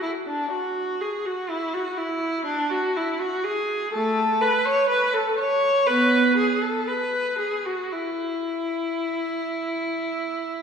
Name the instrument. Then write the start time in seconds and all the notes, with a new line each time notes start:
viola
0.02 E4
0.27 D4
0.52 F#4
1.01 G#4
1.26 F#4
1.50 E4
1.74 F#4
1.97 E4
2.46 D4
2.70 F#4
2.97 E4
3.19 F#4
3.44 G#4
3.93 A3 A4
4.41 B4
4.66 C#5
4.89 B4
5.14 A4
5.38 C#5
5.87 B3 B4
6.37 G#4
6.62 A4
6.88 B4
7.38 G#4
7.66 F#4
7.93 E4